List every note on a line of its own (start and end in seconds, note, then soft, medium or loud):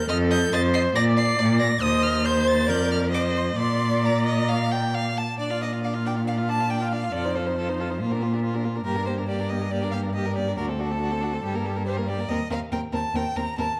0.09 0.48 F2 loud
0.09 0.54 A4 loud
0.09 0.17 D#5 medium
0.09 0.17 F6 loud
0.31 0.39 D#5 medium
0.31 0.52 G6 loud
0.53 0.91 F2 loud
0.53 0.96 C5 loud
0.53 0.61 D#5 medium
0.53 0.61 A6 loud
0.74 0.82 D#5 medium
0.74 0.82 C7 loud
0.95 1.33 A#2 medium
0.95 1.81 D5 loud
0.95 1.03 D5 medium
0.95 1.04 A#6 loud
1.17 1.25 D5 medium
1.17 1.59 C7 loud
1.39 1.77 A#2 loud
1.39 1.47 D5 medium
1.59 1.67 D5 medium
1.59 1.83 A#6 loud
1.81 2.70 D#2 medium
1.81 2.21 C5 medium
1.81 2.26 D#5 loud
1.81 2.04 D#6 loud
2.03 2.27 F6 loud
2.24 2.69 C5 medium
2.24 2.70 C5 loud
2.24 2.49 G6 loud
2.47 2.71 A6 loud
2.67 3.56 F2 medium
2.67 3.12 A#4 medium
2.67 3.10 D5 medium
2.67 2.91 G6 loud
2.92 3.00 F6 loud
3.10 3.56 C5 medium
3.10 3.57 D#5 medium
3.10 3.22 D6 loud
3.37 3.45 C6 medium
3.56 5.14 A#2 medium
3.56 4.01 D5 medium
3.56 5.13 D5 medium
3.56 4.07 C6 loud
4.02 4.24 D5 medium
4.02 4.94 A#5 medium
4.26 4.50 D#5 medium
4.49 4.73 F5 medium
4.72 4.96 G5 medium
4.94 5.19 F5 medium
5.18 5.38 A5 medium
5.39 7.10 A#2 medium
5.39 5.52 D4 medium
5.39 5.52 D5 medium
5.39 5.59 D5 loud
5.50 5.63 F4 medium
5.50 5.63 F5 medium
5.61 5.74 D4 medium
5.61 5.74 D5 medium
5.61 5.71 D#5 medium
5.72 5.83 F4 medium
5.72 5.82 F5 medium
5.83 5.96 D4 medium
5.83 5.96 D5 medium
5.83 5.93 F5 medium
5.94 6.07 F4 medium
5.94 6.07 F5 medium
6.06 6.17 D4 medium
6.06 6.18 D5 medium
6.06 6.14 G5 medium
6.15 6.25 F4 medium
6.15 6.26 F5 soft
6.26 6.38 D4 medium
6.26 6.39 D5 medium
6.26 6.35 F5 medium
6.37 6.50 F4 medium
6.37 6.51 F5 medium
6.49 6.61 D4 medium
6.49 6.62 D5 medium
6.49 6.72 A5 loud
6.59 6.69 F4 medium
6.59 6.71 F5 medium
6.70 6.82 D4 medium
6.70 6.83 D5 medium
6.70 6.92 G5 medium
6.81 6.94 F4 medium
6.81 6.94 F5 soft
6.92 7.05 D4 medium
6.92 7.06 D5 soft
6.92 7.14 F5 medium
7.03 7.14 F4 medium
7.03 7.13 F5 medium
7.13 8.02 F2 medium
7.13 7.26 F4 medium
7.13 7.26 A4 medium
7.13 7.37 D5 loud
7.24 7.37 D#4 medium
7.24 7.37 C5 soft
7.35 7.49 F4 medium
7.35 7.48 A4 medium
7.35 8.65 C5 medium
7.46 7.57 D#4 medium
7.46 7.57 C5 medium
7.58 7.70 F4 medium
7.58 7.71 A4 medium
7.68 7.81 D#4 medium
7.68 7.82 C5 medium
7.80 7.91 F4 medium
7.80 7.92 A4 soft
7.90 8.00 D#4 soft
7.90 8.00 C5 soft
8.00 8.85 A#2 medium
8.00 8.13 A#3 soft
8.00 8.13 F4 medium
8.12 8.24 D4 soft
8.12 8.24 A#4 medium
8.22 8.35 A#3 medium
8.22 8.35 F4 medium
8.33 8.44 D4 medium
8.33 8.43 A#4 soft
8.44 8.56 A#3 medium
8.44 8.56 F4 medium
8.54 8.66 D4 soft
8.54 8.66 A#4 soft
8.64 8.77 A#3 medium
8.64 8.77 F4 medium
8.75 8.85 D4 soft
8.75 8.85 A#4 medium
8.85 10.60 G2 medium
8.85 8.98 A#3 medium
8.85 8.98 G4 medium
8.85 9.05 A#4 medium
8.96 9.09 D4 medium
8.96 9.09 A#4 soft
9.07 9.20 A#3 medium
9.07 9.19 G4 medium
9.07 9.15 C5 medium
9.18 9.28 D4 medium
9.18 9.28 A#4 medium
9.28 9.40 A#3 medium
9.28 9.41 G4 medium
9.28 9.51 D5 medium
9.39 9.52 D4 medium
9.39 9.52 A#4 soft
9.49 9.62 A#3 medium
9.49 9.63 G4 medium
9.49 9.72 D#5 medium
9.60 9.71 D4 soft
9.60 9.70 A#4 soft
9.71 9.83 A#3 medium
9.71 9.84 G4 medium
9.71 9.91 D5 loud
9.82 9.95 D4 medium
9.82 9.95 A#4 soft
9.92 10.07 A#3 medium
9.92 10.05 G4 soft
9.92 10.00 F5 medium
10.03 10.14 D4 medium
10.03 10.14 A#4 medium
10.14 10.28 A#3 medium
10.14 10.27 G4 medium
10.14 10.35 D#5 medium
10.25 10.39 D4 soft
10.25 10.37 A#4 medium
10.36 10.49 A#3 medium
10.36 10.49 G4 medium
10.36 10.57 D5 medium
10.47 10.57 D4 soft
10.47 10.57 A#4 medium
10.57 11.43 D2 medium
10.57 10.69 D4 medium
10.57 10.71 F#4 medium
10.57 10.65 A#4 loud
10.68 10.80 C4 medium
10.68 10.81 A4 medium
10.79 10.92 D4 medium
10.79 10.93 F#4 medium
10.79 11.84 A4 medium
10.91 10.99 C4 medium
10.91 11.01 A4 medium
11.00 11.13 D4 medium
11.00 11.13 F#4 medium
11.11 11.22 C4 medium
11.11 11.24 A4 medium
11.20 11.34 D4 medium
11.20 11.35 F#4 soft
11.32 11.43 C4 medium
11.32 11.44 A4 medium
11.43 12.27 G2 medium
11.43 11.55 G3 medium
11.43 11.56 G4 medium
11.54 11.66 A#3 medium
11.54 11.68 A#4 medium
11.65 11.77 G3 medium
11.65 11.77 G4 medium
11.76 11.85 A#3 medium
11.76 11.87 A#4 soft
11.86 11.99 G3 medium
11.86 11.98 G4 medium
11.86 11.94 C5 medium
11.97 12.10 A#3 medium
11.97 12.10 A#4 medium
12.08 12.19 G3 medium
12.08 12.21 G4 medium
12.08 12.30 D5 medium
12.18 12.29 A#3 medium
12.18 12.29 A#4 medium
12.28 12.36 D#2 medium
12.28 12.37 C4 medium
12.28 12.38 A#4 medium
12.28 12.50 D#5 loud
12.50 12.58 D#2 medium
12.50 12.58 C4 medium
12.50 12.58 A#4 medium
12.50 12.59 F5 medium
12.71 12.80 D#2 medium
12.71 12.79 C4 medium
12.71 12.80 A#4 medium
12.71 12.80 G5 medium
12.92 13.01 D#2 medium
12.92 13.01 C4 medium
12.92 13.00 A#4 medium
12.92 13.17 A5 loud
13.15 13.23 D#2 medium
13.15 13.23 C4 medium
13.15 13.24 A#4 medium
13.15 13.38 G5 loud
13.36 13.45 D#2 medium
13.36 13.46 C4 medium
13.36 13.44 A#4 medium
13.36 13.58 A#5 loud
13.58 13.66 D#2 medium
13.58 13.66 C4 medium
13.58 13.66 A#4 medium
13.58 13.80 A5 loud